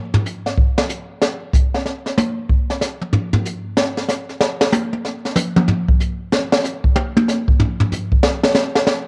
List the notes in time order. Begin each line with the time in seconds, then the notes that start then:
0.14 floor tom
0.26 hi-hat pedal
0.46 snare
0.58 kick
0.78 snare
0.89 hi-hat pedal
1.22 snare
1.53 kick, hi-hat pedal
1.74 snare
1.86 snare
2.06 snare
2.18 hi-hat pedal, high tom
2.49 kick
2.70 snare
2.81 snare, hi-hat pedal
3.01 mid tom
3.13 floor tom
3.33 floor tom
3.45 hi-hat pedal
3.77 snare
3.97 snare
4.09 snare, hi-hat pedal
4.29 snare
4.41 snare
4.61 snare
4.72 hi-hat pedal, high tom
4.93 high tom
5.05 snare
5.25 snare
5.36 hi-hat pedal, mid tom
5.56 mid tom
5.68 floor tom
5.89 kick
6.00 hi-hat pedal
6.32 snare
6.52 snare
6.64 snare, hi-hat pedal
6.84 kick
6.96 high tom
7.17 high tom
7.28 snare, hi-hat pedal
7.48 kick
7.60 floor tom
7.80 floor tom
7.92 floor tom, hi-hat pedal
8.12 kick
8.23 snare
8.43 snare
8.55 snare, hi-hat pedal
8.75 snare
8.87 snare